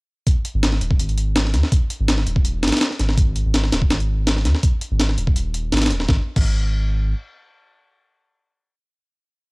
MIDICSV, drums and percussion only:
0, 0, Header, 1, 2, 480
1, 0, Start_track
1, 0, Tempo, 363636
1, 354, Time_signature, 4, 2, 24, 8
1, 12556, End_track
2, 0, Start_track
2, 0, Title_t, "Drums"
2, 352, Note_on_c, 9, 36, 114
2, 352, Note_on_c, 9, 42, 87
2, 484, Note_off_c, 9, 36, 0
2, 484, Note_off_c, 9, 42, 0
2, 592, Note_on_c, 9, 42, 68
2, 724, Note_off_c, 9, 42, 0
2, 831, Note_on_c, 9, 38, 116
2, 831, Note_on_c, 9, 42, 87
2, 956, Note_off_c, 9, 38, 0
2, 956, Note_on_c, 9, 38, 50
2, 963, Note_off_c, 9, 42, 0
2, 1072, Note_on_c, 9, 42, 69
2, 1088, Note_off_c, 9, 38, 0
2, 1196, Note_on_c, 9, 36, 95
2, 1204, Note_off_c, 9, 42, 0
2, 1313, Note_on_c, 9, 42, 86
2, 1328, Note_off_c, 9, 36, 0
2, 1438, Note_off_c, 9, 42, 0
2, 1438, Note_on_c, 9, 42, 45
2, 1552, Note_off_c, 9, 42, 0
2, 1552, Note_on_c, 9, 42, 71
2, 1684, Note_off_c, 9, 42, 0
2, 1791, Note_on_c, 9, 38, 121
2, 1791, Note_on_c, 9, 42, 88
2, 1917, Note_off_c, 9, 38, 0
2, 1917, Note_on_c, 9, 38, 42
2, 1923, Note_off_c, 9, 42, 0
2, 2030, Note_off_c, 9, 38, 0
2, 2030, Note_on_c, 9, 38, 48
2, 2030, Note_on_c, 9, 42, 69
2, 2156, Note_off_c, 9, 38, 0
2, 2156, Note_on_c, 9, 38, 50
2, 2162, Note_off_c, 9, 42, 0
2, 2270, Note_on_c, 9, 36, 113
2, 2270, Note_on_c, 9, 42, 88
2, 2288, Note_off_c, 9, 38, 0
2, 2402, Note_off_c, 9, 36, 0
2, 2402, Note_off_c, 9, 42, 0
2, 2510, Note_on_c, 9, 42, 72
2, 2642, Note_off_c, 9, 42, 0
2, 2749, Note_on_c, 9, 38, 120
2, 2749, Note_on_c, 9, 42, 89
2, 2876, Note_off_c, 9, 38, 0
2, 2876, Note_on_c, 9, 38, 47
2, 2881, Note_off_c, 9, 42, 0
2, 2991, Note_on_c, 9, 42, 70
2, 3008, Note_off_c, 9, 38, 0
2, 3115, Note_on_c, 9, 36, 99
2, 3123, Note_off_c, 9, 42, 0
2, 3230, Note_on_c, 9, 42, 88
2, 3247, Note_off_c, 9, 36, 0
2, 3362, Note_off_c, 9, 42, 0
2, 3470, Note_on_c, 9, 38, 90
2, 3470, Note_on_c, 9, 42, 69
2, 3533, Note_off_c, 9, 38, 0
2, 3533, Note_off_c, 9, 42, 0
2, 3533, Note_on_c, 9, 38, 92
2, 3533, Note_on_c, 9, 42, 69
2, 3596, Note_off_c, 9, 38, 0
2, 3596, Note_off_c, 9, 42, 0
2, 3596, Note_on_c, 9, 38, 90
2, 3596, Note_on_c, 9, 42, 70
2, 3654, Note_off_c, 9, 38, 0
2, 3654, Note_off_c, 9, 42, 0
2, 3654, Note_on_c, 9, 38, 91
2, 3654, Note_on_c, 9, 42, 68
2, 3711, Note_off_c, 9, 38, 0
2, 3711, Note_off_c, 9, 42, 0
2, 3711, Note_on_c, 9, 38, 122
2, 3711, Note_on_c, 9, 42, 91
2, 3838, Note_off_c, 9, 38, 0
2, 3838, Note_on_c, 9, 38, 38
2, 3843, Note_off_c, 9, 42, 0
2, 3953, Note_off_c, 9, 38, 0
2, 3953, Note_on_c, 9, 38, 42
2, 3953, Note_on_c, 9, 42, 68
2, 4076, Note_off_c, 9, 38, 0
2, 4076, Note_on_c, 9, 38, 56
2, 4085, Note_off_c, 9, 42, 0
2, 4192, Note_on_c, 9, 36, 117
2, 4192, Note_on_c, 9, 42, 92
2, 4208, Note_off_c, 9, 38, 0
2, 4324, Note_off_c, 9, 36, 0
2, 4324, Note_off_c, 9, 42, 0
2, 4431, Note_on_c, 9, 42, 71
2, 4563, Note_off_c, 9, 42, 0
2, 4674, Note_on_c, 9, 38, 118
2, 4674, Note_on_c, 9, 42, 89
2, 4800, Note_off_c, 9, 38, 0
2, 4800, Note_on_c, 9, 38, 51
2, 4806, Note_off_c, 9, 42, 0
2, 4916, Note_off_c, 9, 38, 0
2, 4916, Note_on_c, 9, 38, 107
2, 4916, Note_on_c, 9, 42, 81
2, 5039, Note_on_c, 9, 36, 97
2, 5048, Note_off_c, 9, 38, 0
2, 5048, Note_off_c, 9, 42, 0
2, 5154, Note_on_c, 9, 38, 103
2, 5154, Note_on_c, 9, 42, 81
2, 5171, Note_off_c, 9, 36, 0
2, 5282, Note_off_c, 9, 42, 0
2, 5282, Note_on_c, 9, 42, 44
2, 5286, Note_off_c, 9, 38, 0
2, 5414, Note_off_c, 9, 42, 0
2, 5636, Note_on_c, 9, 38, 120
2, 5636, Note_on_c, 9, 42, 92
2, 5762, Note_off_c, 9, 38, 0
2, 5762, Note_on_c, 9, 38, 42
2, 5768, Note_off_c, 9, 42, 0
2, 5876, Note_off_c, 9, 38, 0
2, 5876, Note_on_c, 9, 38, 50
2, 5876, Note_on_c, 9, 42, 70
2, 6001, Note_off_c, 9, 38, 0
2, 6001, Note_on_c, 9, 38, 48
2, 6008, Note_off_c, 9, 42, 0
2, 6113, Note_on_c, 9, 42, 91
2, 6115, Note_on_c, 9, 36, 111
2, 6133, Note_off_c, 9, 38, 0
2, 6245, Note_off_c, 9, 42, 0
2, 6247, Note_off_c, 9, 36, 0
2, 6353, Note_on_c, 9, 42, 67
2, 6485, Note_off_c, 9, 42, 0
2, 6594, Note_on_c, 9, 38, 119
2, 6594, Note_on_c, 9, 42, 87
2, 6721, Note_off_c, 9, 38, 0
2, 6721, Note_on_c, 9, 38, 47
2, 6726, Note_off_c, 9, 42, 0
2, 6834, Note_on_c, 9, 42, 71
2, 6853, Note_off_c, 9, 38, 0
2, 6959, Note_on_c, 9, 36, 97
2, 6966, Note_off_c, 9, 42, 0
2, 7074, Note_on_c, 9, 42, 86
2, 7091, Note_off_c, 9, 36, 0
2, 7206, Note_off_c, 9, 42, 0
2, 7315, Note_on_c, 9, 42, 72
2, 7447, Note_off_c, 9, 42, 0
2, 7554, Note_on_c, 9, 38, 92
2, 7554, Note_on_c, 9, 42, 70
2, 7617, Note_off_c, 9, 38, 0
2, 7617, Note_off_c, 9, 42, 0
2, 7617, Note_on_c, 9, 38, 93
2, 7617, Note_on_c, 9, 42, 69
2, 7678, Note_off_c, 9, 38, 0
2, 7678, Note_off_c, 9, 42, 0
2, 7678, Note_on_c, 9, 38, 93
2, 7678, Note_on_c, 9, 42, 68
2, 7735, Note_off_c, 9, 38, 0
2, 7735, Note_off_c, 9, 42, 0
2, 7735, Note_on_c, 9, 38, 92
2, 7735, Note_on_c, 9, 42, 69
2, 7794, Note_off_c, 9, 38, 0
2, 7794, Note_off_c, 9, 42, 0
2, 7794, Note_on_c, 9, 38, 40
2, 7794, Note_on_c, 9, 42, 67
2, 7919, Note_off_c, 9, 38, 0
2, 7919, Note_on_c, 9, 38, 57
2, 7926, Note_off_c, 9, 42, 0
2, 8032, Note_off_c, 9, 38, 0
2, 8032, Note_on_c, 9, 38, 88
2, 8034, Note_on_c, 9, 36, 116
2, 8164, Note_off_c, 9, 38, 0
2, 8166, Note_off_c, 9, 36, 0
2, 8397, Note_on_c, 9, 49, 86
2, 8399, Note_on_c, 9, 36, 111
2, 8529, Note_off_c, 9, 49, 0
2, 8531, Note_off_c, 9, 36, 0
2, 12556, End_track
0, 0, End_of_file